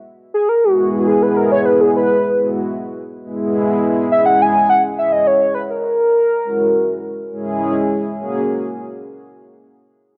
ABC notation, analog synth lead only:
X:1
M:7/8
L:1/16
Q:1/4=103
K:Elyd
V:1 name="Analog synth lead"
z2 G A F3 G B A c B G B- | B3 z8 z3 | e f g2 f2 e d c2 B A3- | A6- A z6 z |
z12 z2 |]